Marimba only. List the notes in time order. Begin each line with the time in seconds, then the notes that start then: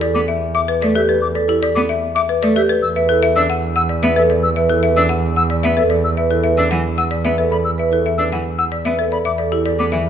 0.01 D5
0.28 E5
0.55 E5
0.68 B4
0.82 D5
0.95 A4
1.09 B4
1.35 D5
1.49 G4
1.63 D5
1.89 E5
2.16 E5
2.29 B4
2.43 D5
2.56 A4
2.69 B4
2.96 E5
3.09 A4
3.23 E5
3.50 F#5
3.76 F#5
3.89 D5
4.03 E5
4.16 B4
4.30 D5
4.56 E5
4.69 A4
4.83 E5
5.09 F#5
5.36 F#5
5.50 D5
5.63 E5
5.77 B4
5.90 D5
6.17 E5
6.31 A4
6.44 E5
6.71 F#5
6.98 F#5
7.11 D5
7.25 E5
7.38 B4
7.52 D5
7.79 E5
7.93 A4
8.06 E5
8.33 F#5
8.59 F#5
8.72 D5
8.85 E5
8.99 B4
9.12 D5
9.25 E5
9.38 D5
9.52 G4
9.66 D5
9.92 E5